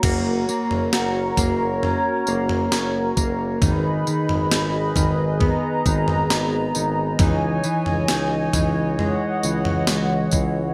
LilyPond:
<<
  \new Staff \with { instrumentName = "Analog synth pad" } { \time 4/4 \key fis \mixolydian \tempo 4 = 67 << { ais''1 | b''2 ais''2 | gis''2 fis''2 | } \\ { <fis' ais' cis''>1 | <gis' b' dis''>1 | <e cis'' dis''>1 | } >> }
  \new Staff \with { instrumentName = "Clean electric guitar" } { \time 4/4 \key fis \mixolydian <ais fis'>8 ais8 fis'8 ais8 cis'8 ais8 cis'8 ais8 | <dis dis'>8 dis8 dis'8 dis8 b8 dis8 b8 dis8 | <e dis'>8 e8 dis'8 e8 gis8 e8 gis8 e8 | }
  \new Staff \with { instrumentName = "Tuba" } { \clef bass \time 4/4 \key fis \mixolydian fis,,8 r16 fis,,16 fis,,8 fis,,8. r16 fis,,8 fis,,8 fis,,8 | gis,,8 r16 gis,,16 gis,,8 gis,,8. r16 gis,,8 gis,,8 gis,,8 | cis,8 r16 cis,16 cis,8 cis,8. r16 cis,8 cis,8 cis,8 | }
  \new DrumStaff \with { instrumentName = "Drums" } \drummode { \time 4/4 <cymc bd tamb tomfh>8 tamb16 tomfh16 <sn tamb>8 <bd tamb tomfh>8 tomfh8 tamb16 tomfh16 <sn tamb>8 <bd tamb>8 | <bd tamb tomfh>8 tamb16 tomfh16 <sn tamb>8 <bd tamb tomfh>8 <bd tomfh>8 <bd tamb>16 tomfh16 <sn tamb>8 tamb8 | <bd tamb tomfh>8 tamb16 tomfh16 <sn tamb>8 <bd tamb tomfh>8 tomfh8 tamb16 tomfh16 <sn tamb>8 <bd tamb>8 | }
>>